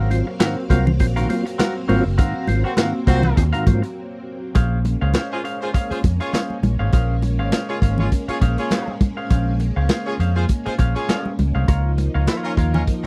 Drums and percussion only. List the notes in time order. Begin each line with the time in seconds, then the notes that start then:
0.11 closed hi-hat, muted conga
0.40 snare, clap, closed hi-hat, high conga
0.70 kick, closed hi-hat
0.87 low conga
0.99 kick, closed hi-hat, muted conga
1.17 closed hi-hat
1.30 closed hi-hat, muted conga
1.46 closed hi-hat
1.59 snare, clap, closed hi-hat, high conga
1.89 open hi-hat, high conga
2.19 kick, closed hi-hat, muted conga
2.47 closed hi-hat, muted conga
2.77 snare, clap, closed hi-hat, high conga
3.07 kick, closed hi-hat
3.23 low conga
3.37 kick, closed hi-hat
3.54 closed hi-hat
3.67 kick, closed hi-hat, muted conga, low conga
3.83 closed hi-hat
4.55 kick, closed hi-hat, muted conga
4.85 closed hi-hat, muted conga
5.14 snare, clap, closed hi-hat, high conga
5.45 closed hi-hat
5.74 kick, closed hi-hat
5.91 closed hi-hat
6.04 kick, closed hi-hat, muted conga
6.20 closed hi-hat
6.33 snare, clap, closed hi-hat, high conga
6.50 high conga
6.63 closed hi-hat, high conga
6.93 kick, closed hi-hat, muted conga
7.22 closed hi-hat, muted conga
7.52 snare, clap, closed hi-hat, high conga
7.82 kick, closed hi-hat
7.98 low conga
8.12 kick, closed hi-hat
8.29 closed hi-hat
8.42 kick, closed hi-hat, muted conga
8.58 closed hi-hat
8.71 snare, clap, closed hi-hat, high conga
8.88 high conga
9.01 kick, closed hi-hat, high conga
9.30 kick, closed hi-hat, muted conga
9.60 closed hi-hat, muted conga
9.89 snare, clap, closed hi-hat, high conga
10.20 closed hi-hat
10.49 kick, closed hi-hat, muted conga
10.66 closed hi-hat
10.79 kick, closed hi-hat, muted conga
10.96 closed hi-hat
11.09 snare, clap, closed hi-hat, high conga
11.26 high conga
11.39 closed hi-hat, high conga
11.68 kick, closed hi-hat, muted conga
11.98 closed hi-hat, muted conga
12.27 snare, clap, closed hi-hat, high conga
12.57 kick, closed hi-hat
12.74 low conga
12.87 kick, closed hi-hat, muted conga